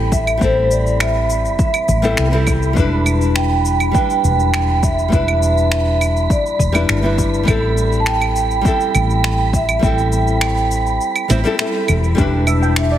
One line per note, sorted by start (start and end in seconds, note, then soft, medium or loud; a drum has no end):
0.00 0.38 A1 medium
0.00 0.36 G3 medium
0.00 0.38 C4 medium
0.00 0.39 E4 medium
0.00 0.39 A4 medium
0.00 0.15 G5 loud
0.00 12.20 B5 medium
0.12 0.40 E5 medium
0.12 kick loud
0.12 cabasa medium
0.27 cabasa soft
0.27 claves medium
0.37 1.55 A1 medium
0.37 1.98 G3 medium
0.37 0.44 B3 medium
0.37 2.00 C4 medium
0.37 kick loud
0.42 2.01 E4 medium
0.42 2.02 A4 medium
0.42 0.69 C5 medium
0.42 cabasa soft
0.71 0.99 D5 medium
0.71 cabasa medium
0.87 cabasa soft
1.00 1.58 E5 medium
1.00 finger snap medium
1.00 cabasa soft
1.00 claves medium
1.30 cabasa medium
1.45 cabasa soft
1.59 2.14 E5 medium
1.59 kick loud
1.59 cabasa soft
1.74 cabasa soft
1.74 claves medium
1.88 2.13 A1 loud
1.88 kick medium
1.88 cabasa medium
2.02 2.29 G3 loud
2.02 2.29 B3 medium
2.02 2.29 C4 medium
2.02 2.30 E4 medium
2.02 2.30 A4 loud
2.02 cabasa soft
2.17 2.73 C2 medium
2.17 finger snap medium
2.17 cabasa soft
2.31 2.72 G3 medium
2.31 2.34 B3 medium
2.31 2.73 C4 medium
2.31 2.74 E4 medium
2.31 2.74 A4 medium
2.47 kick loud
2.47 cabasa medium
2.47 claves medium
2.63 cabasa soft
2.73 3.91 E1 medium
2.73 3.89 G3 medium
2.73 2.79 B3 medium
2.73 3.91 D4 medium
2.73 kick loud
2.73 cabasa soft
2.78 3.92 E4 medium
2.78 3.92 B4 medium
3.06 cabasa medium
3.06 claves medium
3.21 cabasa soft
3.36 3.94 G5 loud
3.36 finger snap loud
3.36 cabasa soft
3.65 cabasa medium
3.80 cabasa soft
3.80 claves medium
3.91 5.07 G3 medium
3.91 3.97 B3 medium
3.91 5.09 D4 medium
3.91 4.79 G5 loud
3.91 kick loud
3.91 cabasa soft
3.96 5.10 E4 medium
3.96 5.10 B4 medium
4.10 cabasa soft
4.24 5.09 E1 medium
4.24 cabasa medium
4.40 cabasa soft
4.54 finger snap medium
4.54 cabasa soft
4.54 claves medium
4.83 5.13 E5 medium
4.83 kick loud
4.83 cabasa medium
4.99 cabasa soft
5.08 6.69 G3 medium
5.08 5.15 B3 medium
5.08 6.71 D4 medium
5.08 kick loud
5.13 6.26 E1 medium
5.13 6.72 E4 medium
5.13 6.72 B4 medium
5.13 6.27 E5 loud
5.13 cabasa soft
5.28 claves medium
5.43 cabasa medium
5.58 cabasa soft
5.72 finger snap medium
5.72 cabasa soft
6.01 cabasa medium
6.01 claves medium
6.17 cabasa soft
6.30 6.86 D5 medium
6.30 kick loud
6.30 cabasa soft
6.46 cabasa soft
6.59 6.84 E1 loud
6.59 kick medium
6.59 cabasa medium
6.72 6.99 G3 loud
6.72 6.75 B3 medium
6.72 7.00 D4 medium
6.72 7.01 E4 medium
6.72 7.01 B4 loud
6.72 cabasa soft
6.72 claves medium
6.89 7.44 G1 medium
6.89 finger snap loud
6.89 cabasa soft
7.02 7.42 G3 medium
7.02 7.05 B3 medium
7.02 7.44 D4 medium
7.02 7.45 E4 medium
7.02 7.45 B4 medium
7.18 kick loud
7.18 cabasa medium
7.34 cabasa soft
7.43 8.60 G3 medium
7.43 7.50 B3 medium
7.43 8.61 C4 medium
7.47 8.61 A1 medium
7.47 8.62 E4 medium
7.47 8.63 A4 loud
7.47 kick loud
7.47 cabasa soft
7.47 claves medium
7.77 cabasa medium
7.92 cabasa soft
8.00 8.07 A5 medium
8.06 8.65 G5 loud
8.06 finger snap loud
8.06 cabasa soft
8.22 claves medium
8.36 cabasa medium
8.51 cabasa soft
8.61 9.78 G3 medium
8.61 8.68 B3 medium
8.61 9.79 C4 medium
8.61 kick loud
8.61 cabasa soft
8.66 9.80 E4 medium
8.66 9.81 A4 medium
8.66 9.57 G5 loud
8.81 cabasa soft
8.95 9.79 A1 medium
8.95 cabasa medium
8.95 claves medium
9.10 cabasa soft
9.24 finger snap loud
9.24 cabasa soft
9.53 9.85 E5 medium
9.53 kick medium
9.53 cabasa medium
9.69 cabasa soft
9.69 claves medium
9.79 10.97 A1 medium
9.79 11.25 G3 medium
9.79 9.85 B3 medium
9.79 11.27 C4 medium
9.79 kick loud
9.79 cabasa soft
9.84 11.28 E4 medium
9.84 11.29 A4 medium
9.84 11.56 G5 loud
9.98 cabasa soft
10.12 cabasa medium
10.27 cabasa soft
10.41 finger snap loud
10.41 cabasa soft
10.41 claves medium
10.57 cabasa soft
10.71 cabasa medium
10.87 cabasa soft
11.01 cabasa soft
11.16 cabasa soft
11.16 claves medium
11.28 11.43 A1 medium
11.28 11.38 G3 medium
11.28 11.31 B3 medium
11.28 11.39 C4 medium
11.28 11.40 E4 medium
11.28 11.40 C5 medium
11.28 cabasa medium
11.44 11.55 G3 medium
11.44 11.47 B3 medium
11.44 11.56 C4 medium
11.44 11.56 E4 medium
11.44 11.57 A4 loud
11.44 cabasa soft
11.58 12.14 G3 medium
11.58 11.61 B3 medium
11.58 12.15 C4 medium
11.58 12.15 E4 medium
11.58 12.16 A4 medium
11.58 finger snap loud
11.58 cabasa soft
11.88 12.13 E1 loud
11.88 cabasa medium
11.88 claves medium
12.04 cabasa soft
12.15 12.98 E1 medium
12.15 12.98 E3 medium
12.15 12.98 G3 medium
12.15 12.21 B3 medium
12.15 12.98 D4 medium
12.15 12.32 G4 medium
12.15 12.98 G4 loud
12.15 12.98 B6 medium
12.15 kick loud
12.15 cabasa soft
12.19 12.98 E4 medium
12.19 12.98 B4 medium
12.47 12.61 E5 medium
12.47 cabasa medium
12.47 claves medium
12.62 12.75 G5 medium
12.62 cabasa soft
12.76 12.98 E5 medium
12.76 finger snap loud
12.76 cabasa soft
12.92 12.98 D5 medium